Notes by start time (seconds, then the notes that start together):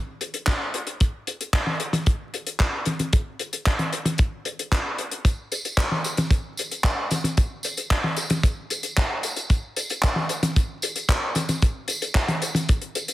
0.21 closed hi-hat
0.34 closed hi-hat
0.47 kick, clap, closed hi-hat
0.74 closed hi-hat
0.87 closed hi-hat
1.00 kick, closed hi-hat
1.27 closed hi-hat
1.41 closed hi-hat
1.53 kick, clap, closed hi-hat
1.67 high tom
1.80 closed hi-hat
1.93 closed hi-hat, high tom
2.06 kick, closed hi-hat
2.34 closed hi-hat
2.47 closed hi-hat
2.59 kick, clap, closed hi-hat
2.86 closed hi-hat, high tom
2.99 closed hi-hat, high tom
3.13 kick, closed hi-hat
3.39 closed hi-hat
3.53 closed hi-hat
3.66 kick, clap, closed hi-hat
3.79 closed hi-hat, high tom
3.93 closed hi-hat
4.05 closed hi-hat, high tom
4.18 kick, closed hi-hat
4.45 closed hi-hat
4.59 closed hi-hat
4.72 kick, clap, closed hi-hat
4.98 closed hi-hat
5.12 closed hi-hat
5.25 kick, closed hi-hat, tambourine
5.52 closed hi-hat, tambourine
5.65 closed hi-hat, tambourine
5.77 kick, clap, closed hi-hat, tambourine
5.92 high tom
6.04 closed hi-hat, tambourine
6.17 closed hi-hat, high tom, tambourine
6.31 kick, closed hi-hat, tambourine
6.57 closed hi-hat, tambourine
6.71 closed hi-hat, tambourine
6.84 kick, clap, closed hi-hat, tambourine
7.11 closed hi-hat, high tom, tambourine
7.24 closed hi-hat, high tom, tambourine
7.37 kick, closed hi-hat, tambourine
7.63 closed hi-hat, tambourine
7.77 closed hi-hat, tambourine
7.90 kick, clap, closed hi-hat, tambourine
8.04 high tom
8.16 closed hi-hat, tambourine
8.30 closed hi-hat, high tom, tambourine
8.43 kick, closed hi-hat, tambourine
8.70 closed hi-hat, tambourine
8.83 closed hi-hat, tambourine
8.97 kick, clap, closed hi-hat
9.23 closed hi-hat, tambourine
9.36 closed hi-hat, tambourine
9.50 kick, closed hi-hat, tambourine
9.76 closed hi-hat, tambourine
9.89 closed hi-hat, tambourine
10.02 kick, clap, closed hi-hat
10.16 high tom
10.29 closed hi-hat, tambourine
10.43 closed hi-hat, high tom, tambourine
10.56 kick, closed hi-hat, tambourine
10.82 closed hi-hat, tambourine
10.96 closed hi-hat, tambourine
11.09 kick, clap, closed hi-hat
11.35 closed hi-hat, high tom, tambourine
11.49 closed hi-hat, high tom, tambourine
11.62 kick, closed hi-hat, tambourine
11.88 closed hi-hat, tambourine
12.02 closed hi-hat, tambourine
12.15 kick, clap, closed hi-hat, tambourine
12.28 closed hi-hat, high tom
12.42 closed hi-hat, tambourine
12.55 closed hi-hat, high tom, tambourine
12.69 kick, closed hi-hat, tambourine
12.82 closed hi-hat
12.95 closed hi-hat, tambourine
13.08 closed hi-hat, tambourine